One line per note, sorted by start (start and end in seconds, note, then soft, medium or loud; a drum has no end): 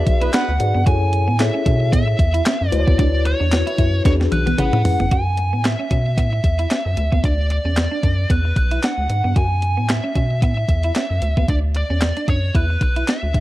0.00 0.45 F#4 medium
0.00 0.46 G#4 medium
0.00 0.46 B4 medium
0.00 0.46 D5 medium
0.00 0.36 E5 loud
0.07 0.29 B1 medium
0.07 kick medium
0.07 closed hi-hat medium
0.21 0.31 B3 loud
0.21 0.29 E4 medium
0.21 0.31 B4 loud
0.21 closed hi-hat medium
0.33 0.54 B3 loud
0.33 0.43 D4 medium
0.33 0.54 B4 loud
0.33 0.83 F#5 loud
0.33 snare loud
0.33 clap medium
0.33 closed hi-hat loud
0.49 0.58 D2 medium
0.60 0.73 G#2 loud
0.60 0.80 F#4 medium
0.60 0.80 G#4 medium
0.60 0.80 B4 medium
0.60 0.81 D5 medium
0.60 muted clean electric guitar stroke soft
0.60 closed hi-hat medium
0.75 0.85 G2 loud
0.75 0.82 B3 medium
0.86 1.30 F#2 loud
0.86 1.27 E4 medium
0.86 0.96 F#4 medium
0.86 1.27 G#4 medium
0.86 1.27 A4 medium
0.86 1.27 C#5 medium
0.86 1.42 G#5 loud
0.86 kick loud
0.86 closed hi-hat medium
1.13 muted clean electric guitar stroke medium
1.13 closed hi-hat medium
1.28 1.51 A2 loud
1.28 1.35 B3 medium
1.39 2.17 E4 medium
1.39 2.17 G#4 medium
1.39 2.17 A4 medium
1.39 2.18 C#5 medium
1.39 1.92 E5 loud
1.39 muted clean electric guitar stroke soft
1.39 snare loud
1.39 clap medium
1.39 closed hi-hat medium
1.54 1.62 C#4 medium
1.66 1.95 B2 loud
1.66 1.75 C#4 medium
1.66 kick medium
1.66 closed hi-hat medium
1.92 2.15 A2 loud
1.92 2.02 B3 loud
1.92 2.69 E5 loud
1.92 kick loud
1.92 closed hi-hat loud
2.08 muted clean electric guitar stroke soft
2.19 2.42 E2 medium
2.19 kick medium
2.19 closed hi-hat medium
2.34 2.41 E4 medium
2.34 closed hi-hat medium
2.46 2.55 C#4 medium
2.46 snare loud
2.46 clap loud
2.46 closed hi-hat loud
2.61 2.71 F#2 medium
2.69 2.85 D2 loud
2.69 3.37 E4 medium
2.69 3.37 F#4 medium
2.69 3.37 B4 medium
2.69 2.80 C5 medium
2.69 2.99 D5 loud
2.69 muted clean electric guitar stroke soft
2.69 closed hi-hat medium
2.79 3.41 C#5 loud
2.87 2.97 D#2 medium
2.87 2.95 B3 medium
2.87 kick loud
2.99 3.34 D2 loud
2.99 3.08 D4 loud
2.99 3.24 D5 loud
2.99 kick loud
2.99 closed hi-hat medium
3.25 4.02 C#5 medium
3.25 muted clean electric guitar stroke soft
3.25 closed hi-hat medium
3.40 3.63 E2 medium
3.40 3.48 D4 medium
3.52 4.05 E4 medium
3.52 4.04 F#4 medium
3.52 4.04 B4 medium
3.52 4.05 C#5 medium
3.52 muted clean electric guitar stroke soft
3.52 snare loud
3.52 clap medium
3.52 closed hi-hat medium
3.67 3.74 E4 medium
3.67 closed hi-hat medium
3.78 4.01 F#2 medium
3.78 3.88 E4 medium
3.78 kick medium
3.78 closed hi-hat medium
4.05 4.28 E2 loud
4.05 4.49 D4 medium
4.05 4.15 D4 loud
4.05 4.49 F#4 medium
4.05 4.49 G#4 medium
4.05 4.49 B4 medium
4.05 4.13 C#5 medium
4.05 kick loud
4.05 snare medium
4.05 closed hi-hat loud
4.20 muted clean electric guitar stroke soft
4.20 snare medium
4.32 4.54 B1 medium
4.32 4.81 B4 medium
4.32 closed hi-hat medium
4.32 high tom medium
4.46 4.54 B3 medium
4.46 closed hi-hat medium
4.46 high tom medium
4.58 4.71 A1 loud
4.58 4.80 C#4 medium
4.58 4.68 C#4 medium
4.58 4.80 E4 medium
4.58 4.80 G#4 medium
4.58 4.80 B4 medium
4.58 5.12 F#5 medium
4.58 closed hi-hat loud
4.58 mid tom medium
4.73 4.83 A2 medium
4.73 mid tom medium
4.84 5.05 C#4 medium
4.84 5.05 E4 medium
4.84 5.05 G#4 medium
4.84 5.05 B4 medium
4.84 muted clean electric guitar stroke soft
4.84 floor tom loud
4.84 open hi-hat medium
5.00 5.10 G1 loud
5.00 5.07 B3 medium
5.00 floor tom medium
5.11 5.55 F#2 loud
5.11 5.21 F#4 medium
5.11 5.67 G#5 medium
5.11 kick loud
5.11 closed hi-hat medium
5.37 muted clean electric guitar stroke soft
5.37 closed hi-hat medium
5.53 5.75 A2 medium
5.53 5.60 B3 medium
5.64 6.18 E5 medium
5.64 muted clean electric guitar stroke soft
5.64 snare loud
5.64 clap medium
5.64 closed hi-hat medium
5.79 5.87 C#4 medium
5.91 6.19 B2 medium
5.91 6.00 C#4 medium
5.91 kick medium
5.91 closed hi-hat medium
6.18 6.40 A2 medium
6.18 6.27 B3 medium
6.18 7.25 E5 medium
6.18 kick loud
6.18 closed hi-hat medium
6.33 muted clean electric guitar stroke soft
6.44 6.66 E2 medium
6.44 kick medium
6.44 closed hi-hat medium
6.59 6.66 E4 medium
6.59 closed hi-hat medium
6.71 6.80 C#4 medium
6.71 snare loud
6.71 clap medium
6.71 closed hi-hat medium
6.86 6.96 F#2 medium
6.97 7.10 D2 loud
6.97 muted clean electric guitar stroke soft
6.97 closed hi-hat medium
7.12 7.22 D#2 medium
7.12 7.19 B3 medium
7.12 kick medium
7.24 7.59 D2 loud
7.24 7.33 D4 medium
7.24 7.50 D5 medium
7.24 kick medium
7.24 closed hi-hat medium
7.50 8.33 D5 medium
7.50 muted clean electric guitar stroke soft
7.50 closed hi-hat medium
7.65 7.88 E2 medium
7.65 7.73 C#4 medium
7.77 muted clean electric guitar stroke soft
7.77 snare medium
7.77 clap medium
7.77 closed hi-hat medium
7.91 7.99 D4 medium
8.03 8.26 F#2 loud
8.03 8.13 D4 medium
8.03 kick medium
8.03 closed hi-hat medium
8.30 8.52 E2 loud
8.30 8.39 B3 medium
8.30 8.56 B4 medium
8.30 kick loud
8.30 closed hi-hat medium
8.45 muted clean electric guitar stroke soft
8.56 8.79 B1 medium
8.56 8.84 B4 medium
8.56 kick medium
8.56 closed hi-hat medium
8.71 8.79 E4 medium
8.71 closed hi-hat medium
8.83 8.93 D4 medium
8.83 9.37 F#5 medium
8.83 snare loud
8.83 clap medium
8.83 closed hi-hat medium
8.98 9.08 D2 medium
9.10 9.22 G#2 medium
9.10 muted clean electric guitar stroke soft
9.10 closed hi-hat medium
9.24 9.35 G2 medium
9.24 9.32 B3 medium
9.36 9.79 F#2 loud
9.36 9.45 F#4 medium
9.36 9.91 G#5 loud
9.36 kick loud
9.36 closed hi-hat medium
9.62 muted clean electric guitar stroke soft
9.62 closed hi-hat medium
9.77 10.00 A2 medium
9.77 9.85 B3 medium
9.89 10.39 E5 medium
9.89 muted clean electric guitar stroke soft
9.89 snare loud
9.89 clap medium
9.89 closed hi-hat medium
10.04 10.11 C#4 medium
10.15 10.44 B2 medium
10.15 10.25 C#4 medium
10.15 kick medium
10.15 closed hi-hat medium
10.42 10.65 A2 medium
10.42 10.52 B3 medium
10.42 11.49 E5 loud
10.42 kick loud
10.42 closed hi-hat medium
10.57 muted clean electric guitar stroke soft
10.69 10.91 E2 medium
10.69 kick medium
10.69 closed hi-hat medium
10.83 10.92 E4 medium
10.83 closed hi-hat medium
10.95 11.05 C#4 medium
10.95 snare loud
10.95 clap medium
10.95 closed hi-hat medium
11.11 11.20 F#2 medium
11.22 11.35 D2 medium
11.22 muted clean electric guitar stroke soft
11.22 closed hi-hat medium
11.37 11.47 D#2 medium
11.37 11.45 B3 medium
11.37 kick medium
11.48 11.84 D2 loud
11.48 11.58 D4 medium
11.48 11.57 D5 medium
11.48 kick loud
11.48 closed hi-hat medium
11.75 12.25 D5 medium
11.75 muted clean electric guitar stroke soft
11.75 closed hi-hat medium
11.90 12.13 E2 medium
11.90 11.98 C#4 medium
12.01 muted clean electric guitar stroke soft
12.01 snare medium
12.01 clap medium
12.01 closed hi-hat medium
12.17 12.24 D4 medium
12.17 closed hi-hat medium
12.28 12.51 F#2 medium
12.28 12.38 D4 medium
12.28 12.54 C#5 medium
12.28 kick medium
12.28 closed hi-hat medium
12.55 12.77 E2 loud
12.55 12.64 E4 medium
12.55 12.81 B4 loud
12.55 kick loud
12.55 closed hi-hat medium
12.70 muted clean electric guitar stroke soft
12.81 13.04 B1 medium
12.81 13.09 B4 medium
12.81 kick medium
12.81 closed hi-hat medium
12.96 13.04 E4 medium
12.96 closed hi-hat medium
13.08 13.17 D4 medium
13.08 13.40 E5 medium
13.08 snare loud
13.08 clap medium
13.08 closed hi-hat medium
13.23 13.33 D2 medium
13.34 13.40 G#2 medium
13.34 muted clean electric guitar stroke soft
13.34 kick medium
13.34 closed hi-hat medium